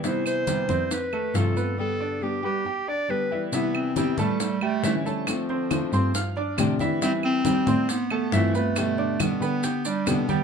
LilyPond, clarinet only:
\new Staff \with { instrumentName = "Clarinet" } { \time 4/4 \key c \major \tempo 4 = 138 c''8 c''4. b'4 a'4 | a'4 g'8 g'4 d''8 b'8. r16 | b8 c'8 c'8 g8 g8 a8 a8 f8~ | f2.~ f8 r8 |
c'8 c'4. b8 b8 a8 a8 | a4 b8 b4 g8 b8. r16 | }